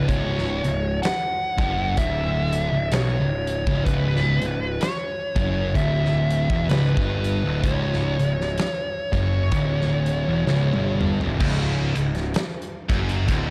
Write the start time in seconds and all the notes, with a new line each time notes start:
0.09 C#1 C#2 C#5, kick, closed hi-hat
0.38 snare
0.64 C#1 C#2, closed hi-hat
1.02 F#5, snare, closed hi-hat
1.57 F#1 F#2, kick, closed hi-hat
1.97 D1 D2 E5, kick, closed hi-hat
2.53 closed hi-hat
2.72 C#1 C#2
2.92 B1 B2 C#5, snare, closed hi-hat
3.19 C#1 C#2
3.47 closed hi-hat
3.66 C#1 C#2, kick
3.85 C#1 C#2 B4, kick, closed hi-hat
4.16 snare
4.40 C#1 C#2, closed hi-hat
4.81 C#5, snare, closed hi-hat
5.35 F#1 F#2, kick, closed hi-hat
5.74 D1 D2 E5, kick, closed hi-hat
6.05 snare
6.30 closed hi-hat
6.50 E1 E2, kick
6.69 C#1 C#2 B4, snare, closed hi-hat
6.97 G1 G2, kick
7.24 closed hi-hat
7.44 D1 D2
7.63 C#1 C#2 C#5, kick, closed hi-hat
7.93 snare
8.18 C#1 C#2, closed hi-hat
8.41 snare
8.58 snare, closed hi-hat
9.13 F#1 F#2 C#5, kick, closed hi-hat
9.51 D1 D2, kick, closed hi-hat
9.81 snare
10.06 closed hi-hat
10.27 E1 E2
10.46 C#1 C#2, snare
10.73 G1 G2, high tom
11.01 mid tom
11.21 D1 D2, floor tom
11.40 C#1 C#2, kick, crash
11.95 C#1 C#2, closed hi-hat
12.15 snare, closed hi-hat
12.34 snare, closed hi-hat
12.62 closed hi-hat
12.89 F#1 F#2, kick, closed hi-hat
13.09 closed hi-hat
13.28 D1 D2, kick, closed hi-hat